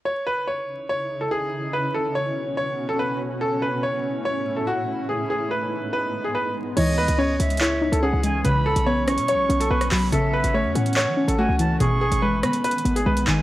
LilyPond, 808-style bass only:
\new Staff \with { instrumentName = "808-style bass" } { \clef bass \time 4/4 \key cis \minor \tempo 4 = 143 r1 | r1 | r1 | r1 |
cis,8 dis,16 cis,8. cis,4~ cis,16 cis,8 cis,8. | b,,8 cis,16 b,,4 b,16. b,,16. b,,8 b,,8 b,,8 | a,,8. a,,8 e,16 a,8. e8 a,,8 cis,8. | gis,,8. gis,,8. dis16 r8. gis,,8 b,,8 gis,,8 | }